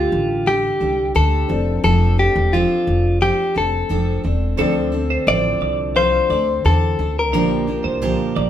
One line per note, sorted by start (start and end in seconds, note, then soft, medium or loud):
0.00 0.47 G2 medium
0.00 1.15 D3 medium
0.00 0.45 G3 medium
0.00 0.47 D4 medium
0.00 1.45 D4 medium
0.00 0.49 F4 medium
0.00 0.47 G4 medium
0.00 1.46 G4 medium
0.00 0.48 A4 medium
0.00 1.47 A4 medium
0.12 0.69 A1 medium
0.46 0.81 G3 medium
0.46 0.81 D4 medium
0.46 1.12 G4 loud
0.46 0.79 G4 medium
0.46 0.79 A4 medium
0.80 1.09 C2 medium
0.80 1.14 G3 soft
0.80 1.14 D4 soft
0.80 1.14 G4 soft
0.80 1.15 A4 medium
1.15 1.43 D2 medium
1.15 1.49 G2 medium
1.15 1.50 D3 medium
1.15 1.50 G3 medium
1.15 1.48 D4 medium
1.15 1.49 G4 medium
1.15 1.83 A4 loud
1.15 1.47 A4 medium
1.48 1.78 F1 loud
1.48 4.19 C4 medium
1.48 1.83 C4 soft
1.48 4.20 D4 medium
1.48 1.83 D4 soft
1.48 4.20 F4 medium
1.48 1.57 G4 soft
1.48 1.83 A4 medium
1.48 4.21 D5 medium
1.57 4.23 A4 medium
1.84 2.26 F1 loud
1.84 2.18 F3 medium
1.84 2.18 C4 medium
1.84 2.18 D4 medium
1.84 2.19 A4 loud
1.84 2.17 A4 medium
2.18 2.53 C4 soft
2.18 2.53 D4 medium
2.18 2.54 G4 medium
2.18 2.52 A4 medium
2.35 2.64 E1 loud
2.53 3.20 F3 medium
2.53 3.21 C4 medium
2.53 3.22 D4 medium
2.53 3.18 F4 medium
2.53 3.22 A4 medium
2.87 3.29 F1 medium
3.21 3.55 F3 medium
3.21 3.55 C4 medium
3.21 3.55 D4 medium
3.21 3.57 G4 medium
3.21 3.53 A4 medium
3.55 3.84 F1 medium
3.55 3.89 C4 soft
3.55 3.89 D4 soft
3.55 3.89 A4 medium
3.55 4.21 A4 loud
3.89 4.18 F1 medium
3.89 4.24 F3 medium
3.89 4.24 C4 medium
3.89 4.23 D4 medium
3.89 4.22 A4 medium
4.23 4.53 E1 medium
4.23 4.55 C4 soft
4.23 4.57 C4 soft
4.23 4.57 D4 soft
4.23 4.58 F4 soft
4.23 4.58 A4 medium
4.23 4.58 A4 soft
4.23 4.59 D5 medium
4.57 5.15 D2 loud
4.57 4.92 D3 loud
4.57 4.93 F3 loud
4.57 7.28 C4 medium
4.57 4.93 C4 loud
4.57 7.29 D4 medium
4.57 4.92 D4 loud
4.57 7.30 F4 medium
4.57 4.75 A4 loud
4.57 4.91 A4 loud
4.57 7.30 A4 medium
4.61 7.31 D5 medium
4.92 5.26 C4 medium
4.92 5.26 D4 medium
4.92 5.27 A4 medium
5.10 5.43 C5 medium
5.27 5.55 A1 loud
5.27 5.99 D3 medium
5.27 5.95 F3 medium
5.27 5.95 C4 medium
5.27 5.96 D4 medium
5.27 5.96 A4 medium
5.27 5.96 D5 loud
5.61 6.18 C2 medium
5.61 5.78 D5 medium
5.95 6.30 F3 medium
5.95 6.30 C4 medium
5.95 6.30 D4 medium
5.95 6.29 A4 medium
5.95 6.65 C5 loud
5.95 6.29 F5 medium
6.30 6.58 D2 medium
6.30 6.64 C4 soft
6.30 6.65 D4 medium
6.30 6.64 A4 medium
6.30 6.47 D5 medium
6.65 6.93 E2 medium
6.65 6.99 D3 medium
6.65 6.99 C4 medium
6.65 6.99 D4 medium
6.65 7.18 A4 medium
6.65 6.98 A4 medium
6.99 7.33 D2 medium
6.99 7.34 C4 soft
6.99 7.33 D4 medium
6.99 7.33 A4 medium
7.19 8.50 A#4 medium
7.31 7.75 A#1 loud
7.31 7.68 A#2 loud
7.31 7.68 D3 medium
7.31 7.68 F3 medium
7.31 8.50 A#3 medium
7.31 7.68 A#3 loud
7.31 8.50 D4 medium
7.31 7.67 D4 medium
7.31 8.50 F4 medium
7.31 8.50 G4 medium
7.31 7.50 A#4 loud
7.35 7.66 G4 loud
7.35 8.50 D5 medium
7.67 8.01 F3 soft
7.67 8.01 A#3 medium
7.67 8.02 D4 medium
7.67 8.01 G4 medium
7.84 8.13 C2 medium
7.84 8.17 C5 medium
8.02 8.50 A#2 loud
8.02 8.50 D3 medium
8.02 8.50 F3 medium
8.02 8.50 A#3 loud
8.02 8.50 D4 loud
8.02 8.50 G4 medium
8.36 8.50 A#1 loud
8.36 8.50 D5 medium